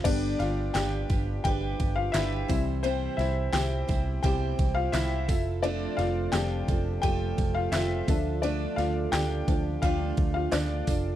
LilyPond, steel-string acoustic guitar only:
\new Staff \with { instrumentName = "Steel-string acoustic guitar" } { \time 4/4 \key g \mixolydian \tempo 4 = 86 <g d' g' b'>4 <g d' g' b'>8 <d' g' b'>8 <g d' g' b'>4 <g d' g' b'>8 <g c' e' c''>8 | <c e g c' e' c''>4 <g c' e' c''>8 <g c' e' c''>8 <c e g c' e' c''>4 <g c' e' c''>8 <c' f' a'>8 | <f a c' f' a'>4 <a c' f' a'>8 <c' f' a'>8 <f a c' f' a'>4 <a c' f' a'>8 <d' f' a'>8 | <d a d' f' a'>4 <a d' f' a'>8 <d' f' a'>8 <d a d' f' a'>4 <a d' f' a'>8 <d' f' a'>8 | }